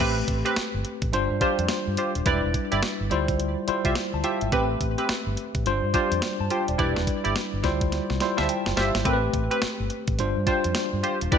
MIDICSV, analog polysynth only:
0, 0, Header, 1, 2, 480
1, 0, Start_track
1, 0, Time_signature, 4, 2, 24, 8
1, 0, Key_signature, 0, "minor"
1, 0, Tempo, 566038
1, 9653, End_track
2, 0, Start_track
2, 0, Title_t, "Analog polysynth"
2, 0, Program_c, 0, 90
2, 0, Note_on_c, 0, 60, 83
2, 0, Note_on_c, 0, 67, 78
2, 0, Note_on_c, 0, 71, 99
2, 124, Note_off_c, 0, 60, 0
2, 125, Note_off_c, 0, 67, 0
2, 126, Note_off_c, 0, 71, 0
2, 382, Note_on_c, 0, 60, 86
2, 383, Note_on_c, 0, 67, 76
2, 386, Note_on_c, 0, 71, 96
2, 462, Note_off_c, 0, 60, 0
2, 463, Note_off_c, 0, 67, 0
2, 465, Note_off_c, 0, 71, 0
2, 1197, Note_on_c, 0, 65, 79
2, 1199, Note_on_c, 0, 67, 74
2, 1202, Note_on_c, 0, 72, 82
2, 1325, Note_off_c, 0, 65, 0
2, 1326, Note_off_c, 0, 67, 0
2, 1328, Note_off_c, 0, 72, 0
2, 1679, Note_on_c, 0, 65, 72
2, 1681, Note_on_c, 0, 67, 65
2, 1683, Note_on_c, 0, 72, 77
2, 1806, Note_off_c, 0, 65, 0
2, 1807, Note_off_c, 0, 67, 0
2, 1808, Note_off_c, 0, 72, 0
2, 1916, Note_on_c, 0, 64, 89
2, 1917, Note_on_c, 0, 67, 80
2, 1921, Note_on_c, 0, 74, 93
2, 2045, Note_off_c, 0, 64, 0
2, 2045, Note_off_c, 0, 67, 0
2, 2047, Note_off_c, 0, 74, 0
2, 2302, Note_on_c, 0, 64, 87
2, 2304, Note_on_c, 0, 67, 73
2, 2308, Note_on_c, 0, 74, 92
2, 2383, Note_off_c, 0, 64, 0
2, 2383, Note_off_c, 0, 67, 0
2, 2385, Note_off_c, 0, 74, 0
2, 3263, Note_on_c, 0, 65, 85
2, 3265, Note_on_c, 0, 67, 74
2, 3267, Note_on_c, 0, 72, 72
2, 3267, Note_on_c, 0, 76, 85
2, 3343, Note_off_c, 0, 65, 0
2, 3344, Note_off_c, 0, 67, 0
2, 3345, Note_off_c, 0, 72, 0
2, 3345, Note_off_c, 0, 76, 0
2, 3595, Note_on_c, 0, 65, 77
2, 3596, Note_on_c, 0, 67, 67
2, 3597, Note_on_c, 0, 72, 68
2, 3598, Note_on_c, 0, 76, 86
2, 3724, Note_off_c, 0, 65, 0
2, 3724, Note_off_c, 0, 67, 0
2, 3725, Note_off_c, 0, 72, 0
2, 3725, Note_off_c, 0, 76, 0
2, 3834, Note_on_c, 0, 60, 82
2, 3835, Note_on_c, 0, 67, 78
2, 3839, Note_on_c, 0, 71, 101
2, 3964, Note_off_c, 0, 60, 0
2, 3964, Note_off_c, 0, 67, 0
2, 3966, Note_off_c, 0, 71, 0
2, 4222, Note_on_c, 0, 60, 82
2, 4225, Note_on_c, 0, 67, 75
2, 4227, Note_on_c, 0, 71, 90
2, 4303, Note_off_c, 0, 60, 0
2, 4304, Note_off_c, 0, 67, 0
2, 4305, Note_off_c, 0, 71, 0
2, 5034, Note_on_c, 0, 65, 78
2, 5036, Note_on_c, 0, 67, 71
2, 5039, Note_on_c, 0, 72, 80
2, 5164, Note_off_c, 0, 65, 0
2, 5164, Note_off_c, 0, 67, 0
2, 5166, Note_off_c, 0, 72, 0
2, 5516, Note_on_c, 0, 65, 76
2, 5518, Note_on_c, 0, 67, 71
2, 5521, Note_on_c, 0, 72, 80
2, 5644, Note_off_c, 0, 65, 0
2, 5646, Note_off_c, 0, 67, 0
2, 5647, Note_off_c, 0, 72, 0
2, 5751, Note_on_c, 0, 64, 90
2, 5755, Note_on_c, 0, 67, 81
2, 5758, Note_on_c, 0, 74, 89
2, 5882, Note_off_c, 0, 64, 0
2, 5884, Note_off_c, 0, 67, 0
2, 5886, Note_off_c, 0, 74, 0
2, 6140, Note_on_c, 0, 64, 82
2, 6144, Note_on_c, 0, 67, 76
2, 6146, Note_on_c, 0, 74, 87
2, 6222, Note_off_c, 0, 64, 0
2, 6224, Note_off_c, 0, 67, 0
2, 6225, Note_off_c, 0, 74, 0
2, 7098, Note_on_c, 0, 65, 76
2, 7101, Note_on_c, 0, 67, 75
2, 7103, Note_on_c, 0, 72, 77
2, 7104, Note_on_c, 0, 76, 86
2, 7181, Note_off_c, 0, 65, 0
2, 7182, Note_off_c, 0, 67, 0
2, 7183, Note_off_c, 0, 72, 0
2, 7184, Note_off_c, 0, 76, 0
2, 7434, Note_on_c, 0, 65, 77
2, 7435, Note_on_c, 0, 67, 74
2, 7438, Note_on_c, 0, 72, 67
2, 7440, Note_on_c, 0, 76, 81
2, 7563, Note_off_c, 0, 65, 0
2, 7564, Note_off_c, 0, 67, 0
2, 7565, Note_off_c, 0, 72, 0
2, 7566, Note_off_c, 0, 76, 0
2, 7672, Note_on_c, 0, 60, 89
2, 7675, Note_on_c, 0, 67, 78
2, 7678, Note_on_c, 0, 71, 88
2, 7803, Note_off_c, 0, 60, 0
2, 7804, Note_off_c, 0, 67, 0
2, 7805, Note_off_c, 0, 71, 0
2, 8060, Note_on_c, 0, 60, 77
2, 8064, Note_on_c, 0, 67, 78
2, 8066, Note_on_c, 0, 71, 92
2, 8142, Note_off_c, 0, 60, 0
2, 8144, Note_off_c, 0, 67, 0
2, 8145, Note_off_c, 0, 71, 0
2, 8875, Note_on_c, 0, 65, 75
2, 8877, Note_on_c, 0, 67, 72
2, 8879, Note_on_c, 0, 72, 87
2, 9004, Note_off_c, 0, 65, 0
2, 9005, Note_off_c, 0, 67, 0
2, 9006, Note_off_c, 0, 72, 0
2, 9355, Note_on_c, 0, 65, 78
2, 9357, Note_on_c, 0, 67, 74
2, 9360, Note_on_c, 0, 72, 85
2, 9484, Note_off_c, 0, 65, 0
2, 9485, Note_off_c, 0, 67, 0
2, 9487, Note_off_c, 0, 72, 0
2, 9595, Note_on_c, 0, 64, 81
2, 9598, Note_on_c, 0, 67, 86
2, 9600, Note_on_c, 0, 74, 98
2, 9653, Note_off_c, 0, 64, 0
2, 9653, Note_off_c, 0, 67, 0
2, 9653, Note_off_c, 0, 74, 0
2, 9653, End_track
0, 0, End_of_file